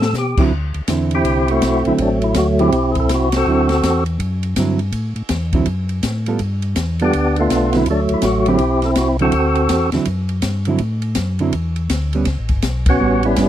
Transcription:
Already playing: tonewheel organ A2 A4
0.02 snare
0.13 tonewheel organ B2, snare, hi-hat pedal
0.18 tonewheel organ G4
0.37 tonewheel organ B2, hollow-body jazz guitar D3 F#3 C4 E4, kick, crash
0.51 tonewheel organ D2
0.74 tonewheel organ D2, ride
0.88 tonewheel organ E2, hollow-body jazz guitar D3 C4 E4, kick, snare, hi-hat pedal, ride
1.11 tonewheel organ E4 G4, ride
1.15 tonewheel organ C4
1.25 tonewheel organ C2, kick, ride
1.48 tonewheel organ A3 C4 F#4, ride
1.62 tonewheel organ B1, kick, snare, hi-hat pedal, ride
1.85 tonewheel organ B1 E4, hollow-body jazz guitar D3 F#3 C4 E4, ride
1.98 tonewheel organ A1 F#3 A3 D4, kick, ride
2.22 tonewheel organ E4, ride
2.34 tonewheel organ D2 F#4, kick, snare, hi-hat pedal, ride
2.59 hollow-body jazz guitar D3 F#3 C4 E4, tonewheel organ C4 E4 G4, ride
2.72 tonewheel organ B1, kick, ride
2.92 tonewheel organ G#4, ride
2.96 tonewheel organ A4, kick
3.09 tonewheel organ C2, kick, snare, hi-hat pedal, ride
3.14 tonewheel organ F#4
3.32 snare, ride
3.36 tonewheel organ C4 F#4 A4
3.46 tonewheel organ D2, hollow-body jazz guitar D3 F#3 C4 E4
3.69 snare, ride
3.83 tonewheel organ E2, kick, snare, hi-hat pedal, ride
4.06 ride
4.19 tonewheel organ F#2, kick, ride
4.43 ride
4.56 tonewheel organ G2, hollow-body jazz guitar D3 F#3 C4 E4, kick, snare, hi-hat pedal, ride
4.79 ride
4.92 tonewheel organ A2, kick, ride
5.16 tonewheel organ A2, ride
5.29 tonewheel organ E2, kick, snare, hi-hat pedal, ride
5.53 hollow-body jazz guitar D3 F#3 C4 E4, kick, ride
5.66 tonewheel organ F#2, kick, ride
5.89 ride
6.03 tonewheel organ A2, kick, snare, hi-hat pedal, ride
6.26 hollow-body jazz guitar G3 B3 F4 A4, ride
6.39 tonewheel organ G2, kick, ride
6.62 ride
6.76 tonewheel organ E2, kick, snare, hi-hat pedal, ride
6.99 hollow-body jazz guitar G3 B3 F4 A4, tonewheel organ B3 D4, ride
7.04 tonewheel organ G4
7.13 tonewheel organ D2, kick, ride
7.36 tonewheel organ A3 B3, ride
7.41 tonewheel organ F4
7.50 tonewheel organ B1, kick, snare, hi-hat pedal, ride
7.73 hollow-body jazz guitar D3 F#3 C4 E4, tonewheel organ E4, snare, ride
7.86 tonewheel organ D2, kick, ride
7.90 tonewheel organ F#3 A3 D4
8.09 tonewheel organ D2, ride
8.14 tonewheel organ E4
8.22 tonewheel organ A1 F#4, kick, snare, hi-hat pedal, ride
8.40 tonewheel organ F#4
8.46 hollow-body jazz guitar D3 F#3 C4 E4, tonewheel organ C4 E4 G4, ride
8.58 tonewheel organ B1, kick, ride
8.82 tonewheel organ A4, snare, ride
8.95 tonewheel organ C2 F#4, kick, snare, hi-hat pedal, ride
9.19 hollow-body jazz guitar D3 F#3 C4 E4, tonewheel organ C4 F#4 A4, ride
9.32 tonewheel organ D2, kick, ride
9.55 ride
9.69 tonewheel organ E2, kick, snare, hi-hat pedal, ride
9.92 tonewheel organ E2, hollow-body jazz guitar D3 F#3 C4 E4, snare, ride
10.05 tonewheel organ F#2, kick, ride
10.29 ride
10.42 tonewheel organ G2, kick, snare, hi-hat pedal, ride
10.65 hollow-body jazz guitar D3 F#3 C4 E4, ride
10.78 tonewheel organ A2, kick, ride
11.02 ride
11.15 tonewheel organ F#2, kick, snare, hi-hat pedal, ride
11.39 hollow-body jazz guitar D3 F#3 C4 E4, ride
11.53 tonewheel organ E2, kick, ride
11.76 ride
11.90 tonewheel organ D2, kick, snare, hi-hat pedal, ride
12.13 hollow-body jazz guitar G3 B3 C#4, ride
12.25 tonewheel organ C#2, kick, snare, ride
12.39 tonewheel organ A1
12.49 tonewheel organ G1, kick, ride
12.62 tonewheel organ B1, kick, snare, hi-hat pedal, ride
12.86 tonewheel organ B3 C#4 F#4, kick, ride
13.00 tonewheel organ A1, hollow-body jazz guitar G3 B3 C#4
13.23 tonewheel organ G3 C#4 E4, ride
13.36 tonewheel organ F#1, hollow-body jazz guitar G3 B3 C#4, kick, snare, hi-hat pedal, ride

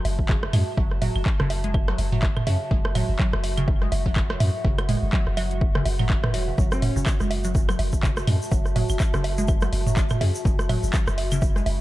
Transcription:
Already playing: ambient pad F#4 E5 A5
0.05 sub bass F#1, open hi-hat, low woodblock
0.19 kick
0.29 synth arpeggio sound C#3, kick, clap, low woodblock
0.43 cross-stick
0.53 sub bass F#2, synth arpeggio sound G#3, mid tom, open hi-hat, claves, low woodblock
0.77 sub bass F#1, synth arpeggio sound F#3, kick, low woodblock
0.91 cross-stick
1.02 synth arpeggio sound F#3, mid tom, open hi-hat, low woodblock
1.16 sub bass F#1, claves
1.26 kick, clap, low woodblock
1.40 sub bass F#1, synth arpeggio sound C#3, cross-stick
1.50 open hi-hat, low woodblock
1.64 synth arpeggio sound G#3, closed hi-hat
1.74 kick, claves, low woodblock
1.88 synth arpeggio sound F#3, cross-stick
1.98 sub bass F#1, open hi-hat, low woodblock
2.12 synth arpeggio sound F#3, mid tom
2.23 kick, clap, low woodblock
2.37 cross-stick, mid tom, claves
2.47 sub bass F#2, synth arpeggio sound C#3, open hi-hat, low woodblock
2.71 sub bass F#1, synth arpeggio sound G#3, kick, low woodblock
2.85 cross-stick
2.95 synth arpeggio sound F#3, mid tom, open hi-hat, claves, low woodblock
3.09 sub bass F#1
3.17 synth arpeggio sound F#3, ambient pad F#5, kick, clap, low woodblock
3.33 sub bass F#1, cross-stick
3.44 open hi-hat, low woodblock
3.57 synth arpeggio sound C#3, closed hi-hat, claves
3.68 kick, low woodblock
3.82 synth arpeggio sound G#3, cross-stick
3.92 sub bass F#1, open hi-hat, low woodblock
4.06 synth arpeggio sound F#3, kick
4.16 kick, clap, claves, low woodblock
4.30 synth arpeggio sound F#3, cross-stick
4.40 sub bass F#2, mid tom, open hi-hat, low woodblock
4.64 sub bass F#1, synth arpeggio sound C#3, kick, low woodblock
4.78 cross-stick, closed hi-hat, claves
4.89 synth arpeggio sound G#3, mid tom, open hi-hat, low woodblock
5.03 sub bass F#1
5.13 synth arpeggio sound F#3, kick, clap, low woodblock
5.27 sub bass F#1, cross-stick
5.37 synth arpeggio sound F#3, open hi-hat, claves, low woodblock
5.51 closed hi-hat
5.61 kick, low woodblock
5.75 synth arpeggio sound C#3, cross-stick
5.86 sub bass F#1, open hi-hat, low woodblock
5.99 synth arpeggio sound F#3, mid tom, claves
6.10 synth arpeggio sound F#3, kick, clap, low woodblock
6.24 synth arpeggio sound E3, cross-stick, mid tom
6.34 sub bass E1, synth arpeggio sound F#3, open hi-hat, low woodblock
6.48 synth arpeggio sound C#3
6.58 sub bass F#1, synth arpeggio sound F#3, kick, low woodblock, shaker
6.72 alto saxophone C#4, cross-stick, shaker
6.82 mid tom, open hi-hat, low woodblock
6.96 sub bass F#1, synth arpeggio sound C#3, shaker
7.04 ambient pad A5, kick, clap, claves, low woodblock, shaker
7.20 sub bass F#1, synth arpeggio sound G#3, cross-stick, shaker
7.31 open hi-hat, low woodblock
7.44 synth arpeggio sound F#3, closed hi-hat, shaker
7.55 kick, low woodblock, shaker
7.69 synth arpeggio sound F#3, cross-stick, claves, shaker
7.79 sub bass F#1, open hi-hat, low woodblock
7.93 kick, shaker
8.03 synth arpeggio sound C#3, kick, clap, low woodblock, shaker
8.17 cross-stick, shaker
8.27 sub bass F#2, synth arpeggio sound G#3, mid tom, open hi-hat, claves, low woodblock
8.42 shaker
8.51 sub bass F#1, synth arpeggio sound F#3, kick, low woodblock, shaker
8.66 cross-stick, shaker
8.76 synth arpeggio sound F#3, mid tom, open hi-hat, low woodblock
8.89 sub bass F#1, claves, shaker
9.00 kick, clap, low woodblock, shaker
9.14 sub bass F#1, synth arpeggio sound C#3, cross-stick, shaker
9.24 open hi-hat, low woodblock
9.38 synth arpeggio sound G#3, closed hi-hat, shaker
9.48 kick, claves, low woodblock, shaker
9.61 synth arpeggio sound F#3, cross-stick, shaker
9.73 sub bass F#1, open hi-hat, low woodblock
9.87 synth arpeggio sound F#3, mid tom, shaker
9.97 kick, clap, low woodblock, shaker
10.09 cross-stick, mid tom, claves, shaker
10.21 sub bass F#2, synth arpeggio sound C#3, open hi-hat, low woodblock
10.35 shaker
10.45 sub bass F#1, synth arpeggio sound G#3, kick, low woodblock, shaker
10.59 cross-stick, shaker
10.69 synth arpeggio sound F#3, mid tom, open hi-hat, claves, low woodblock
10.83 sub bass F#1, shaker
10.91 synth arpeggio sound F#3, ambient pad B5, kick, clap, low woodblock, shaker
11.07 sub bass F#1, cross-stick, shaker
11.18 open hi-hat, low woodblock
11.32 synth arpeggio sound C#3, closed hi-hat, claves, shaker
11.42 kick, low woodblock, shaker
11.56 synth arpeggio sound G#3, cross-stick, shaker
11.66 sub bass F#1, open hi-hat, low woodblock

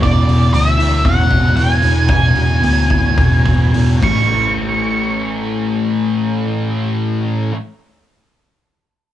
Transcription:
0.02 picked electric bass E1, distorted electric guitar E2 B2 E3, lead electric guitar D5, kick, open hi-hat
0.27 picked electric bass E1, distorted electric guitar B2 E3, open hi-hat
0.52 picked electric bass D2, distorted electric guitar E2 B2 E3, lead electric guitar E5, open hi-hat
0.78 distorted electric guitar B2 E3, open hi-hat
1.04 picked electric bass E1, distorted electric guitar E2 B2 E3, lead electric guitar F#5, kick, open hi-hat
1.29 picked electric bass E1, distorted electric guitar B2 E3, kick, open hi-hat
1.56 picked electric bass E1, distorted electric guitar E2 B2 E3, lead electric guitar G#5, open hi-hat
1.82 picked electric bass E1, distorted electric guitar B2 E3, open hi-hat
2.08 picked electric bass E1, distorted electric guitar E2 B2 E3, lead electric guitar G#5, kick, open hi-hat
2.34 picked electric bass E1, distorted electric guitar B2 E3, open hi-hat
2.61 picked electric bass D2, distorted electric guitar E2 B2 E3, open hi-hat
2.88 distorted electric guitar B2 E3, kick, open hi-hat
3.16 picked electric bass E1, distorted electric guitar E2 B2 E3, kick, open hi-hat
3.45 picked electric bass E1, distorted electric guitar B2 E3, kick, open hi-hat
3.73 picked electric bass E1, distorted electric guitar E2 B2 E3, open hi-hat
4.01 picked electric bass A1, distorted electric guitar A2 E3 A3, lead electric guitar C#6, kick, crash

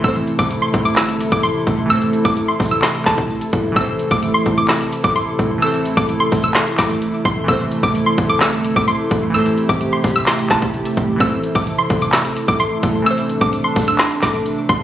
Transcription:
0.00 synth keys E3 A3 C4, closed hi-hat
0.04 808-style bass A1, analog synth pad C3 A3 E4 A4, synth keys A4, synth pluck E6, kick
0.08 synth keys C5
0.16 closed hi-hat
0.27 closed hi-hat
0.39 808-style bass A1, synth pluck D6, kick, closed hi-hat
0.51 closed hi-hat
0.62 synth pluck C6
0.74 808-style bass A1, kick, closed hi-hat
0.85 synth pluck D6, closed hi-hat
0.96 808-style bass G1, synth pluck E6, snare, clap, closed hi-hat
1.09 closed hi-hat
1.20 closed hi-hat
1.32 808-style bass A1, synth pluck D6, kick, closed hi-hat
1.43 synth pluck C6, closed hi-hat
1.67 808-style bass A1, kick, closed hi-hat
1.86 synth keys E3 A3
1.90 808-style bass A2, synth keys C4 A4, synth pluck E6, closed hi-hat
1.94 synth keys C5
2.02 closed hi-hat
2.13 closed hi-hat
2.25 808-style bass A1, synth pluck D6, kick, closed hi-hat
2.37 closed hi-hat
2.48 synth pluck C6
2.60 808-style bass A1, kick, open hi-hat
2.71 synth pluck E6, closed hi-hat
2.82 synth pluck C6, snare, clap, closed hi-hat
2.95 closed hi-hat
3.06 808-style bass A1, synth pluck A5, kick, snare, clap, closed hi-hat
3.18 kick, closed hi-hat
3.30 closed hi-hat
3.41 closed hi-hat
3.53 808-style bass A1, kick, closed hi-hat
3.72 synth keys E3 A3
3.76 808-style bass A1, analog synth pad C3 A3 E4 A4, synth keys C4 A4, synth pluck E6, kick, closed hi-hat
3.80 synth keys C5
3.88 closed hi-hat
3.99 closed hi-hat
4.11 808-style bass A1, synth pluck D6, kick, closed hi-hat
4.23 closed hi-hat
4.34 synth pluck C6
4.46 808-style bass A1, kick, closed hi-hat
4.58 synth pluck D6, closed hi-hat
4.69 synth pluck E6, snare, clap, closed hi-hat
4.81 closed hi-hat
4.92 closed hi-hat
5.04 808-style bass A1, synth pluck D6, kick, closed hi-hat
5.16 synth pluck C6, closed hi-hat
5.39 808-style bass A1, kick, closed hi-hat
5.58 synth keys E3 A3
5.62 synth keys C4 A4, synth pluck E6, closed hi-hat
5.67 synth keys C5
5.74 closed hi-hat
5.86 closed hi-hat
5.97 808-style bass A1, synth pluck D6, kick, closed hi-hat
6.09 closed hi-hat
6.20 synth pluck C6
6.32 808-style bass A1, kick, open hi-hat
6.44 synth pluck E6, closed hi-hat
6.55 synth pluck C6, snare, clap, closed hi-hat
6.67 closed hi-hat
6.78 808-style bass A1, synth pluck D6, kick, snare, clap, closed hi-hat
6.90 closed hi-hat
7.02 closed hi-hat
7.25 808-style bass A1, synth pluck C6, kick, closed hi-hat
7.44 synth keys E3 A3
7.48 808-style bass A1, synth keys C4 A4, analog synth pad E4 A4, synth pluck E6, kick, closed hi-hat
7.53 synth keys C5
7.60 closed hi-hat
7.72 closed hi-hat
7.83 808-style bass A1, synth pluck D6, kick, closed hi-hat
7.95 closed hi-hat
8.06 synth pluck C6
8.18 808-style bass A1, kick, closed hi-hat
8.29 synth pluck D6, closed hi-hat
8.41 808-style bass G1, synth pluck E6, snare, clap, closed hi-hat
8.53 closed hi-hat
8.65 closed hi-hat
8.76 808-style bass A1, synth pluck D6, kick, closed hi-hat
8.88 synth pluck C6, closed hi-hat
9.11 808-style bass A1, kick, closed hi-hat
9.30 synth keys E3 A3
9.34 808-style bass A2, synth keys C4 A4, analog synth pad G4, synth pluck E6, closed hi-hat
9.38 synth keys C5
9.46 closed hi-hat
9.58 closed hi-hat
9.69 808-style bass A1, synth pluck D6, kick, closed hi-hat
9.81 closed hi-hat
9.93 synth pluck C6
10.04 808-style bass A1, kick, open hi-hat
10.16 synth pluck E6, closed hi-hat
10.27 synth pluck C6, snare, clap, closed hi-hat
10.39 closed hi-hat
10.50 808-style bass A1, synth pluck A5, kick, snare, clap, closed hi-hat
10.62 kick, closed hi-hat
10.74 closed hi-hat
10.85 closed hi-hat
10.97 808-style bass A1, kick, closed hi-hat
11.16 synth keys E3 A3
11.20 808-style bass A1, synth keys C4 A4, analog synth pad A4, synth pluck E6, kick, closed hi-hat
11.25 synth keys C5
11.32 closed hi-hat
11.44 closed hi-hat
11.55 808-style bass A1, synth pluck D6, kick, closed hi-hat
11.67 closed hi-hat
11.78 synth pluck C6
11.90 808-style bass A1, kick, closed hi-hat
12.02 synth pluck D6, closed hi-hat
12.13 synth pluck E6, snare, clap, closed hi-hat
12.25 closed hi-hat
12.37 closed hi-hat
12.48 808-style bass A1, synth pluck D6, kick, closed hi-hat
12.60 synth pluck C6, closed hi-hat
12.83 808-style bass A1, kick, closed hi-hat
13.02 synth keys E3 A3, analog synth pad D4, synth pluck E6
13.06 synth keys C4 A4, closed hi-hat
13.11 synth keys C5
13.18 closed hi-hat
13.30 closed hi-hat
13.41 808-style bass A1, synth pluck D6, kick, closed hi-hat
13.53 closed hi-hat
13.64 synth pluck C6
13.76 808-style bass A1, kick, open hi-hat
13.88 synth pluck E6, closed hi-hat
13.99 synth pluck C6, snare, clap, closed hi-hat
14.11 closed hi-hat
14.22 808-style bass A1, synth pluck D6, kick, snare, clap, closed hi-hat
14.34 closed hi-hat
14.46 closed hi-hat
14.69 808-style bass A1, synth pluck C6, kick, closed hi-hat

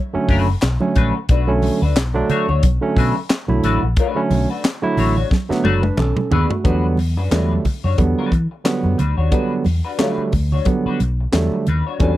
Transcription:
0.13 tine electric piano D3 F#3 A3 C#4, muted clean electric guitar stroke, muted fingered electric bass stroke
0.29 fingered electric bass F#1, clean electric guitar A3 D4 F#4 B4, kick, open hi-hat
0.48 muted clean electric guitar stroke
0.62 fingered electric bass B1, muted clean electric guitar stroke, snare, clap, closed hi-hat, muted conga
0.80 tine electric piano D3 F#3 A3 C#4, muted clean electric guitar stroke, high conga
0.96 fingered electric bass A#1, clean electric guitar A3 D4 F#4 B4, kick, closed hi-hat, muted conga, low conga
1.16 muted clean electric guitar stroke
1.29 fingered electric bass B1, clean electric guitar A3 D4 F#4 B4, kick, closed hi-hat, muted conga
1.47 tine electric piano D3 F#3 A3 C#4
1.62 muted clean electric guitar stroke, open hi-hat, muted conga, high conga
1.82 fingered electric bass D2, clean electric guitar A3 D4 F#4 B4
1.96 fingered electric bass B1, muted clean electric guitar stroke, snare, clap, closed hi-hat, muted conga
2.14 tine electric piano D3 F#3 A3 D4, muted clean electric guitar stroke, high conga
2.30 clean electric guitar A3 D4 F#4 C#5, closed hi-hat, muted conga, low conga
2.48 fingered electric bass D2, clean electric guitar A3 D4 F#4 C#5, low conga
2.63 fingered electric bass B1, kick, closed hi-hat, muted conga, high conga
2.81 tine electric piano D3 F#3 A3 C#4, muted clean electric guitar stroke
2.97 fingered electric bass B2, clean electric guitar A3 D4 F#4 B4, kick, open hi-hat, muted conga
3.16 muted clean electric guitar stroke
3.30 muted clean electric guitar stroke, snare, clap, closed hi-hat, muted conga
3.48 fingered electric bass B1, tine electric piano D3 F#3 A3 E4, muted clean electric guitar stroke, high conga
3.64 fingered electric bass A1, clean electric guitar A3 D4 F#4 B4, closed hi-hat, low conga
3.83 fingered electric bass A#1, muted clean electric guitar stroke
3.97 clean electric guitar A3 D4 F#4 B4, kick, closed hi-hat, muted conga
4.15 tine electric piano D3 F#3 A3 C#4
4.31 fingered electric bass B1, muted clean electric guitar stroke, open hi-hat, muted conga, high conga
4.50 clean electric guitar A3 D4 F#4 B4
4.64 muted clean electric guitar stroke, snare, clap, closed hi-hat, muted conga
4.82 tine electric piano D3 F#3 A3 E4, muted clean electric guitar stroke, high conga
4.97 fingered electric bass A1, clean electric guitar A3 D4 F#4 C#5, open hi-hat, muted conga, low conga
5.16 clean electric guitar A3 D4 F#4 C#5, low conga
5.31 kick, snare, high conga
5.49 tine electric piano D3 F#3 A3 B3, muted fingered electric bass stroke, muted clean electric guitar stroke, snare
5.64 fingered electric bass F#1, clean electric guitar A3 D4 F#4 B4, tine electric piano F#4 D5, high tom, muted conga
5.83 tine electric piano D4 B4, muted clean electric guitar stroke, high tom
5.97 fingered electric bass B1, tine electric piano C#4 A4, muted clean electric guitar stroke, clap, mid tom, muted conga
6.16 muted clean electric guitar stroke, mid tom, high conga
6.31 fingered electric bass D#2, clean electric guitar A3 D4 F#4 B4, tine electric piano B3 G#4, floor tom, muted conga, low conga
6.50 tine electric piano A3 F#4, muted clean electric guitar stroke, floor tom
6.64 fingered electric bass E2, tine electric piano D3 F#3 G3 B3, clean electric guitar G3 D4 F#4 B4, kick, closed hi-hat, muted conga
6.97 muted clean electric guitar stroke, open hi-hat, muted conga, high conga
7.17 fingered electric bass F#2, clean electric guitar G3 D4 F#4 B4
7.31 fingered electric bass E2, tine electric piano D3 F#3 G3 A3, clean electric guitar G3 D4 F#4 B4, snare, clap, closed hi-hat, muted conga
7.51 high conga
7.65 muted clean electric guitar stroke, kick, open hi-hat, low conga
7.84 fingered electric bass F#2, clean electric guitar G3 D4 F#4 C#5, low conga
7.98 fingered electric bass E2, tine electric piano D3 F#3 G3 B3, muted clean electric guitar stroke, kick, closed hi-hat, muted conga, high conga
8.19 clean electric guitar G3 D4 F#4 B4
8.32 fingered electric bass E3, muted clean electric guitar stroke, kick, closed hi-hat
8.51 muted clean electric guitar stroke
8.64 tine electric piano D3 F#3 G3 B3, muted clean electric guitar stroke, snare, clap, closed hi-hat, muted conga
8.84 fingered electric bass F#2, muted clean electric guitar stroke, high conga
8.98 fingered electric bass D2, clean electric guitar G3 D4 F#4 B4, closed hi-hat, muted conga, low conga
9.17 fingered electric bass D#2, clean electric guitar G3 D4 F#4 C#5
9.31 tine electric piano D3 F#3 G3 B3, clean electric guitar G3 D4 F#4 B4, kick, closed hi-hat
9.65 fingered electric bass E2, muted clean electric guitar stroke, open hi-hat, muted conga, high conga
9.85 clean electric guitar G3 D4 F#4 B4
9.98 tine electric piano D3 F#3 G3 A3, clean electric guitar G3 D4 F#4 B4, snare, clap, closed hi-hat, muted conga
10.18 high conga
10.32 fingered electric bass D2, muted clean electric guitar stroke, kick, open hi-hat, muted conga, low conga
10.52 clean electric guitar G3 D4 F#4 C#5, low conga
10.65 tine electric piano D3 F#3 G3 B3, muted clean electric guitar stroke, kick, closed hi-hat, high conga
10.85 clean electric guitar G3 D4 F#4 B4, muted fingered electric bass stroke
11.00 fingered electric bass B1, muted clean electric guitar stroke, closed hi-hat, muted conga
11.20 muted clean electric guitar stroke
11.32 fingered electric bass E2, tine electric piano D3 F#3 G3 A3, muted clean electric guitar stroke, snare, clap, closed hi-hat, muted conga
11.52 muted clean electric guitar stroke, high conga
11.67 fingered electric bass D#2, clean electric guitar G3 D4 F#4 B4, closed hi-hat, muted conga, low conga
11.87 clean electric guitar G3 D4 F#4 C#5
11.99 fingered electric bass E2, tine electric piano D3 F#3 G3 C#4, clean electric guitar G3 D4 F#4 B4, kick, closed hi-hat

